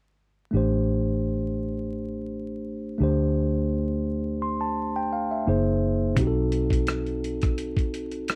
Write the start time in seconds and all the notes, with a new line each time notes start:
0.51 A1 A3 D4 G4
0.57 C5
2.98 D2 A3 D4 G4
3.03 C5
4.42 C6
4.61 A5
4.96 G5
5.13 F5
5.31 E5
5.47 F#1 A#3 D#4 G#4 C5
6.15 B1 C4 D#4 F#4, kick, closed hi-hat
6.21 G4
6.27 A4
6.52 closed hi-hat
6.70 kick, closed hi-hat
6.87 cross-stick, closed hi-hat
7.06 closed hi-hat
7.24 closed hi-hat
7.42 kick, cross-stick, closed hi-hat
7.58 closed hi-hat
7.77 kick, closed hi-hat
7.94 closed hi-hat
8.11 closed hi-hat
8.28 cross-stick, closed hi-hat